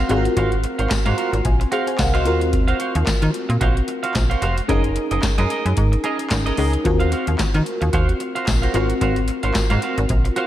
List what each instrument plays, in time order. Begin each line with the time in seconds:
0.09 fm bass G#1, fm electric piano C4 F4 F#4 G#4, clean electric guitar F#4 C5 F5, closed hi-hat
0.17 fm electric piano A#4
0.25 muted clean electric guitar stroke, closed hi-hat
0.37 fm bass G#1, clean electric guitar F#4 C5 F5, kick, closed hi-hat
0.52 muted clean electric guitar stroke, closed hi-hat
0.64 muted clean electric guitar stroke, closed hi-hat
0.79 fm bass G#1, clean electric guitar F#4 C5 F5, closed hi-hat
0.90 fm bass G#2, muted clean electric guitar stroke, kick, snare, clap, closed hi-hat, tambourine
1.06 fm bass G#2, clean electric guitar F#4 C5 F5, closed hi-hat
1.17 clean electric guitar F#4 C5 F5, fm electric piano A#5, closed hi-hat
1.33 fm bass G#1, muted clean electric guitar stroke, closed hi-hat
1.45 fm bass A#1, fm electric piano G#5, kick, closed hi-hat
1.60 muted clean electric guitar stroke, closed hi-hat
1.72 clean electric guitar F#4 C5 F5, fm electric piano G#4 F5 F#5, closed hi-hat
1.87 fm electric piano C5 G#5, muted clean electric guitar stroke, closed hi-hat
1.98 fm bass C2, fm electric piano A#4 F5 F#5, muted clean electric guitar stroke, kick, snare, clap, closed hi-hat, tambourine
2.14 fm electric piano F#4 D#5, clean electric guitar F#4 C5 F5, closed hi-hat
2.25 fm bass D#2, fm electric piano C4 F4 F#4 A#4, clean electric guitar F#4 C5 F5, closed hi-hat
2.41 muted clean electric guitar stroke, closed hi-hat
2.53 muted clean electric guitar stroke, kick, closed hi-hat
2.68 clean electric guitar F#4 C5 F5, closed hi-hat
2.80 clean electric guitar F#4 C5 F5, closed hi-hat
2.95 fm bass D#2, muted clean electric guitar stroke, closed hi-hat
3.06 fm bass D#3, muted clean electric guitar stroke, kick, snare, clap, closed hi-hat, tambourine
3.22 fm bass D#3, muted clean electric guitar stroke, closed hi-hat
3.34 closed hi-hat
3.49 fm bass A#2, muted clean electric guitar stroke, closed hi-hat
3.61 fm bass A#1, clean electric guitar F#4 C5 F5, kick, closed hi-hat
3.76 muted clean electric guitar stroke, closed hi-hat
3.88 muted clean electric guitar stroke, closed hi-hat
4.03 clean electric guitar F#4 C5 F5, closed hi-hat
4.15 fm bass A#1, muted clean electric guitar stroke, kick, snare, clap, closed hi-hat, tambourine
4.30 clean electric guitar F#4 C5 F5, closed hi-hat
4.41 fm bass F1, clean electric guitar F#4 C5 F5, closed hi-hat
4.57 muted clean electric guitar stroke, closed hi-hat
4.68 fm bass F#1, fm electric piano C#4 D#4 G#4 A#4, clean electric guitar G#4 A#4 D#5, kick, closed hi-hat
4.84 muted clean electric guitar stroke, closed hi-hat
4.96 muted clean electric guitar stroke, closed hi-hat
5.11 fm bass F#1, clean electric guitar G#4 A#4 D#5, closed hi-hat
5.22 fm bass F#2, muted clean electric guitar stroke, kick, snare, clap, closed hi-hat, tambourine
5.38 fm bass F#2, clean electric guitar G#4 A#4 D#5, closed hi-hat
5.50 clean electric guitar G#4 A#4 D#5, closed hi-hat
5.65 fm bass F#2, muted clean electric guitar stroke, closed hi-hat
5.77 fm bass G#2, kick, closed hi-hat
5.92 muted clean electric guitar stroke, closed hi-hat
6.04 clean electric guitar G#4 A#4 D#5, closed hi-hat
6.19 muted clean electric guitar stroke, closed hi-hat
6.30 fm bass G#1, muted clean electric guitar stroke, kick, snare, clap, closed hi-hat, tambourine
6.46 clean electric guitar G#4 A#4 D#5, closed hi-hat
6.57 fm bass C#2, fm electric piano C#4 D#4 G#4 A#4, clean electric guitar G#4 A#4 D#5, open hi-hat
6.73 muted clean electric guitar stroke, closed hi-hat
6.84 fm bass D#2, fm electric piano C4 F4 F#4 A#4, muted clean electric guitar stroke, kick, closed hi-hat
7.00 clean electric guitar F#4 C5 F5, closed hi-hat
7.12 clean electric guitar F#4 C5 F5, closed hi-hat
7.27 fm bass D#2, muted clean electric guitar stroke, closed hi-hat
7.39 fm bass D#3, muted clean electric guitar stroke, kick, snare, clap, closed hi-hat, tambourine
7.54 fm bass D#3, muted clean electric guitar stroke, closed hi-hat
7.66 closed hi-hat
7.81 fm bass D#2, muted clean electric guitar stroke, closed hi-hat
7.93 fm bass D#2, clean electric guitar F#4 C5 F5, kick, closed hi-hat
8.08 muted clean electric guitar stroke, closed hi-hat
8.20 muted clean electric guitar stroke, closed hi-hat
8.35 clean electric guitar F#4 C5 F5, closed hi-hat
8.47 fm bass A#1, muted clean electric guitar stroke, kick, snare, clap, closed hi-hat, tambourine
8.62 clean electric guitar F#4 C5 F5, closed hi-hat
8.74 fm bass G#1, fm electric piano C4 F4 F#4 A#4, clean electric guitar F#4 C5 F5, closed hi-hat
8.89 muted clean electric guitar stroke, closed hi-hat
9.01 fm bass G#1, clean electric guitar F#4 C5 F5, kick, closed hi-hat
9.16 muted clean electric guitar stroke, closed hi-hat
9.28 muted clean electric guitar stroke, closed hi-hat
9.43 fm bass G#1, clean electric guitar F#4 C5 F5, closed hi-hat
9.54 fm bass G#2, muted clean electric guitar stroke, kick, snare, clap, closed hi-hat, tambourine
9.70 fm bass G#2, clean electric guitar F#4 C5 F5, closed hi-hat
9.82 clean electric guitar F#4 C5 F5, closed hi-hat
9.97 fm bass G#1, muted clean electric guitar stroke, closed hi-hat
10.09 fm bass A#1, kick, closed hi-hat
10.25 muted clean electric guitar stroke, closed hi-hat
10.36 clean electric guitar F#4 C5 F5, closed hi-hat